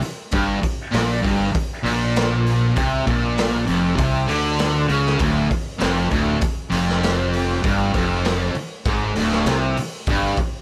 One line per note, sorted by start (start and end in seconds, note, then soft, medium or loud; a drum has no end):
0.01 muted distorted electric guitar stroke medium
0.01 muted fingered electric bass stroke soft
0.01 open hi-hat medium
0.31 0.61 G1 medium
0.31 0.60 G2 medium
0.31 kick loud
0.31 open hi-hat medium
0.62 muted distorted electric guitar stroke medium
0.62 muted fingered electric bass stroke soft
0.62 kick medium
0.62 open hi-hat medium
0.91 1.22 A#1 medium
0.91 1.21 A#2 loud
0.91 snare loud
0.91 open hi-hat medium
1.22 1.53 G1 medium
1.22 1.51 G2 medium
1.22 kick medium
1.22 open hi-hat medium
1.52 muted distorted electric guitar stroke medium
1.52 muted fingered electric bass stroke soft
1.52 kick loud
1.52 open hi-hat medium
1.83 2.72 A#1 medium
1.83 2.75 A#2 loud
1.83 open hi-hat medium
2.16 snare loud
2.16 open hi-hat medium
2.47 open hi-hat soft
2.76 3.05 C2 medium
2.76 3.06 C3 medium
2.76 kick loud
2.76 open hi-hat medium
3.07 3.64 A#1 medium
3.07 3.66 A#2 medium
3.07 kick medium
3.07 open hi-hat soft
3.38 snare loud
3.38 open hi-hat medium
3.67 3.97 F1 loud
3.67 3.96 F2 medium
3.67 open hi-hat medium
3.96 4.27 C2 medium
3.96 4.27 C3 loud
3.96 kick loud
3.96 open hi-hat medium
4.27 4.85 D2 medium
4.27 4.88 D3 loud
4.27 open hi-hat soft
4.59 snare loud
4.59 open hi-hat medium
4.88 5.18 C#2 medium
4.88 5.18 C#3 medium
4.88 open hi-hat medium
5.06 snare soft
5.19 5.48 D1 medium
5.19 5.49 D2 loud
5.19 kick loud
5.19 open hi-hat medium
5.50 muted distorted electric guitar stroke medium
5.50 muted fingered electric bass stroke soft
5.50 kick medium
5.50 open hi-hat medium
5.78 6.10 F1 medium
5.78 6.09 F2 medium
5.78 snare loud
5.78 open hi-hat medium
6.10 6.40 D1 medium
6.10 6.39 D2 medium
6.10 kick medium
6.10 open hi-hat medium
6.41 muted distorted electric guitar stroke medium
6.41 muted fingered electric bass stroke soft
6.41 kick loud
6.41 open hi-hat medium
6.70 7.59 F1 loud
6.70 7.62 F2 medium
6.70 open hi-hat medium
6.89 snare soft
7.03 snare loud
7.03 open hi-hat medium
7.33 open hi-hat medium
7.63 7.92 G1 medium
7.63 7.93 G2 loud
7.63 kick loud
7.63 open hi-hat medium
7.93 8.51 F1 medium
7.93 8.54 F2 medium
7.93 kick medium
7.93 open hi-hat medium
8.25 snare loud
8.25 open hi-hat medium
8.54 muted fingered electric bass stroke soft
8.54 muted distorted electric guitar stroke medium
8.54 open hi-hat medium
8.85 9.14 G#1 medium
8.85 9.16 G#2 loud
8.85 kick loud
8.85 open hi-hat medium
9.16 9.44 D1 loud
9.16 9.46 D2 loud
9.16 open hi-hat medium
9.32 snare soft
9.46 9.75 C2 medium
9.46 9.76 C3 medium
9.46 snare loud
9.46 open hi-hat medium
9.77 muted fingered electric bass stroke soft
9.77 muted distorted electric guitar stroke medium
9.77 open hi-hat medium
10.07 10.36 G1 medium
10.07 10.37 G2 loud
10.07 kick loud
10.07 open hi-hat medium
10.37 muted fingered electric bass stroke soft
10.37 muted distorted electric guitar stroke medium
10.37 kick medium
10.37 open hi-hat medium